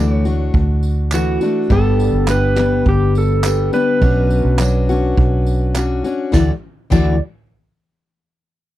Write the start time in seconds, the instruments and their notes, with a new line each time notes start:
Already playing: fingered electric bass D2, steel-string acoustic guitar E3 A3, electric slide guitar D5
0.00 steel-string acoustic guitar D4 F#4
0.13 electric slide guitar C#5
0.25 steel-string acoustic guitar A3 D4 F#4, tambourine
0.54 fingered electric bass D2, kick
0.83 tambourine
1.12 steel-string acoustic guitar E3 A3 D4 F#4, electric slide guitar F#4, clap, tambourine
1.41 steel-string acoustic guitar A3 D4 F#4, tambourine
1.70 fingered electric bass G1, steel-string acoustic guitar G2 D3 G3 B3 D4 G4, electric slide guitar A4, kick
1.99 tambourine
2.13 fingered electric bass G1
2.27 steel-string acoustic guitar G3 B3 D4 G4, electric slide guitar B4, clap, tambourine
2.56 steel-string acoustic guitar G3 B3 D4 G4, clap, tambourine
2.86 fingered electric bass G1, electric slide guitar G4, kick
3.15 electric slide guitar A4, tambourine
3.43 steel-string acoustic guitar G3 B3 D4 G4, clap, tambourine
3.73 steel-string acoustic guitar G3 B3 D4 G4, electric slide guitar B4, tambourine
4.02 fingered electric bass B1, steel-string acoustic guitar B2 F#3 C#4 D4 F#4, kick
4.30 tambourine
4.45 fingered electric bass B1
4.59 steel-string acoustic guitar F#3 C#4 D4 F#4, clap, tambourine
4.89 steel-string acoustic guitar C#4 D4 F#4, tambourine
5.17 fingered electric bass B1, kick
5.46 tambourine
5.74 steel-string acoustic guitar F#3 C#4 D4 F#4, clap, tambourine
6.04 steel-string acoustic guitar C#4 D4 F#4, tambourine
6.32 fingered electric bass D2, steel-string acoustic guitar D3 E3 A3 E4 F#4, electric slide guitar D5, kick, snare, tambourine
6.90 fingered electric bass D2, steel-string acoustic guitar D3 E3 A3 E4 F#4, electric slide guitar D5, kick, crash, tambourine